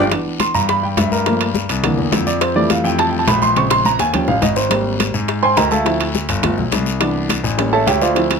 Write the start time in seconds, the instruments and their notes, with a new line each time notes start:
0.10 grand piano E3 B3 D4, high bongo, high conga, high timbale, long guiro
0.26 high conga
0.40 grand piano C6, high bongo, high conga, high timbale, short guiro
0.54 grand piano G2 A#5, high conga, short guiro
0.69 grand piano B5, high bongo, high conga, high timbale, long guiro
0.83 grand piano G5, high conga
0.97 grand piano G2 E5, high bongo, low bongo, high conga, high timbale, low timbale, short guiro
1.11 grand piano A#4, high conga, short guiro
1.26 grand piano F3 A3 A#3, high bongo, high conga, high timbale, long guiro
1.40 high conga, high timbale
1.54 high bongo, high conga, short guiro
1.69 grand piano C2, high bongo, high conga, high timbale, short guiro
1.83 grand piano D3 E3 A#3, high bongo, high conga, low conga, high timbale, long guiro
1.98 grand piano E2, high bongo, high conga
2.12 grand piano F2, high bongo, low bongo, high conga, high timbale, low timbale, short guiro
2.26 grand piano D5, high bongo, high conga, short guiro
2.41 grand piano C5, high bongo, high conga, high timbale
2.55 grand piano E3 G3 A3 D5, high conga
2.70 grand piano F5, high bongo, high conga, high timbale, short guiro
2.84 grand piano F2 G5, high conga, short guiro
2.99 grand piano A5, high bongo, high conga, high timbale, long guiro
3.10 grand piano G5, high conga
3.19 grand piano A5
3.27 grand piano A#1 B5, high bongo, low bongo, high conga, high timbale, low timbale, short guiro
3.42 grand piano C6, high conga, short guiro
3.56 grand piano C#3 G#3 C4 C#6, high bongo, high conga, high timbale, long guiro
3.70 grand piano C6, high bongo, high conga, high timbale
3.85 grand piano A#5, high conga, short guiro
3.99 grand piano D#2 G#5, high bongo, high conga, high timbale, short guiro
4.13 grand piano F3 G3 C#4 G5, low bongo, high conga, low conga, high timbale, long guiro
4.28 grand piano A1 F5, low bongo, high conga
4.42 grand piano G#1 D#5, low bongo, high conga, high timbale, short guiro
4.56 grand piano C5, low bongo, short guiro
4.70 grand piano G3 A#3 C4, high bongo, high conga, high timbale, long guiro
4.86 high conga
5.00 high bongo, high conga, high timbale, short guiro
5.14 grand piano G#2, high conga, short guiro
5.28 high bongo, high conga, high timbale, long guiro
5.43 grand piano C5 G5 G#5 C6, high conga
5.57 grand piano D2 A#4 D#5 G5 A#5, high bongo, low bongo, high conga, high timbale, short guiro
5.71 grand piano A4 E5 F5 A5, high conga, short guiro
5.85 grand piano F3 C4 E4, high bongo, high conga, high timbale, long guiro
6.00 high conga, high timbale
6.15 high bongo, high conga, short guiro
6.29 grand piano G1, high bongo, high conga, high timbale, short guiro
6.42 grand piano A3 B3 F4, high bongo, high conga, low conga, high timbale
6.58 grand piano B1, high bongo, high conga, low conga
6.72 grand piano C2, high bongo, low bongo, high conga, high timbale, short guiro
6.86 high bongo, high conga, short guiro
7.00 grand piano E3 B3 D4, high bongo, high conga, high timbale, long guiro
7.15 high conga
7.29 high bongo, high conga, high timbale, short guiro
7.44 grand piano A1, high conga, short guiro
7.58 grand piano G3 A#3 C#4, high bongo, high conga, high timbale
7.73 grand piano A4 C#5 E5 A5, high conga
7.87 grand piano D2 G4 C#5 E5 G5, high bongo, low bongo, high conga, high timbale, short guiro
8.01 grand piano F4 C5 D5 F5, high conga, short guiro
8.15 grand piano F3 C4 E4, high bongo, high conga, high timbale, long guiro
8.30 high bongo, high conga, high timbale